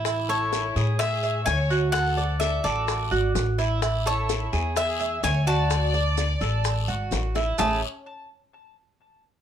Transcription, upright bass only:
\new Staff \with { instrumentName = "Upright bass" } { \clef bass \time 4/4 \key a \major \tempo 4 = 127 a,,4. a,4. d,4~ | d,4. a,,4 gis,,8 a,,4~ | a,,4. e,4. d,4~ | d,4. a,,4 gis,,8 a,,4 |
a,,8 r2. r8 | }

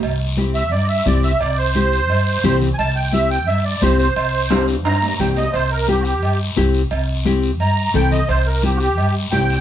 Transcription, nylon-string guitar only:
\new Staff \with { instrumentName = "Nylon-string guitar" } { \time 4/4 \key c \major \tempo 4 = 174 r4 <c' e' g'>8 r4. <c' e' g'>8 r8 | r4 <c' e' g'>8 r4. <c' e' g'>8 r8 | r4 <c' e' g'>8 r4. <c' e' g'>8 r8 | r4 <c' e' g'>8 r4. <c' e' g'>8 r8 |
r4 <c' e' g'>8 r4. <c' e' g'>8 r8 | r4 <c' e' g'>8 r4. <c' e' a'>8 r8 | r4 <c' e' g'>8 r4. <c' e' g'>8 r8 | }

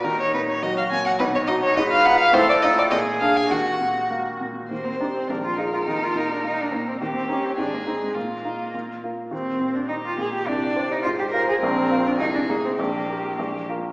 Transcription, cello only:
\new Staff \with { instrumentName = "Cello" } { \time 2/4 \key ees \minor \tempo 4 = 104 ees'4 ges'4 | dis'4 ces''4 | a'4 aes'4 | ges'4. r8 |
\key ees \major bes16 c'16 d'16 c'16 d'16 f'16 ees'16 f'16 | ees'16 f'16 ees'16 d'16 ees'16 d'16 bes16 c'16 | bes16 c'16 des'16 c'16 d'16 bes16 c'16 aes16 | bes4. r8 |
c'8. d'16 ees'16 f'16 aes'16 g'16 | d'8. ees'16 f'16 g'16 bes'16 aes'16 | c'8. d'16 ees'16 d'16 bes16 c'16 | bes4. r8 | }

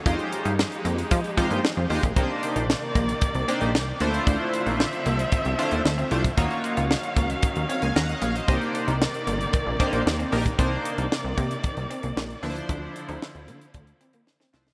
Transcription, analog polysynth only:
\new Staff \with { instrumentName = "Analog polysynth" } { \time 4/4 \key c \minor \tempo 4 = 114 << { r1 | r1 | r1 | r2 r8 <des'' f''>16 <f'' aes''>16 <ges'' bes''>16 <ees'' ges''>16 <des'' f''>16 <c'' ees''>16~ |
<c'' ees''>16 r2. r8. | r1 | r1 | } \\ { <aes ees' f' g' c''>4 r4. <aes ees' f' g' c''>8 r8 <aes ees' f' g' c''>8 | <bes d' ees' g' bes' c''>4 r4. <bes d' ees' g' c''>8 r8 <a d' e' f' c''>8~ | <a d' e' f' c''>4 r4. <a d' e' f' c''>8 r8 <a d' e' f' c''>8 | <bes ees' f' ges' des''>4 r2. |
<bes d' ees' g' c''>4 r4. <bes d' ees' g' c''>8 r8 <bes d' ees' g' bes'>8 | <bes d' ees' c''>4 r2 r8 <f d' e' b' c''>8~ | <f d' e' b' c''>4 r2 r8 <f d' e' c''>8 | } >> }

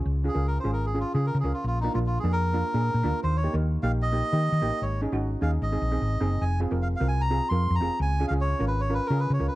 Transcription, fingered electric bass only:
\new Staff \with { instrumentName = "Fingered electric bass" } { \clef bass \time 4/4 \key des \major \tempo 4 = 151 des,8. des,8. aes,,4~ aes,,16 des8 des16 des,16 r16 | bes,,8. bes,,8. f,4~ f,16 bes,8 bes,16 d,16 r16 | ees,8. ees,8. bes,,4~ bes,,16 ees8 ees16 a,,16 r16 | aes,,8. aes,,8. ees,8 aes,,8 bes,,8 aes,,8 ges,,8 |
f,,8. f,,8. c,4~ c,16 f,8 f,16 f,,16 r16 | des,8. des,8. aes,,4~ aes,,16 des8 des16 des,16 r16 | }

